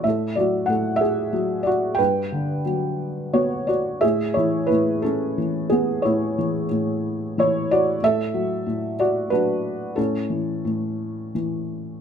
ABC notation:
X:1
M:3/4
L:1/8
Q:1/4=90
K:Dlyd
V:1 name="Felt piano"
[Ae] [Fd] [Af] [Ge]2 [Fd] | [B=g]2 z2 [Fc] [Fd] | [Ge] [Ec] [EB] [CA]2 [B,G] | [Ec]2 z2 [Ec] [Fd] |
[Ae]3 [Fd] [DB]2 | [CA]4 z2 |]
V:2 name="Felt piano" clef=bass
A,, F, A,,2 F,2 | =G,, D, F,2 B,2 | A,, E, A,,2 E,2 | A,, E, A,,2 E,2 |
A,, F, A,,2 F,2 | A,, E, A,,2 E,2 |]